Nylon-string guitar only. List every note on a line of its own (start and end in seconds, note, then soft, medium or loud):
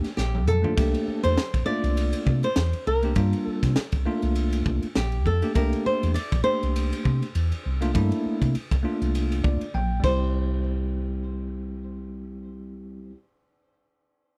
0.17 0.47 G4 medium
0.48 1.26 A4 medium
1.23 1.65 C5 medium
1.66 2.44 D5 medium
2.44 2.84 C5 medium
2.87 3.45 A#4 medium
3.45 3.73 A4 medium
4.96 5.27 G4 medium
5.26 5.54 A4 medium
5.56 5.86 A#4 medium
5.86 6.14 C5 medium
6.14 6.43 D5 medium
6.44 9.69 C5 medium
10.04 13.14 C5 medium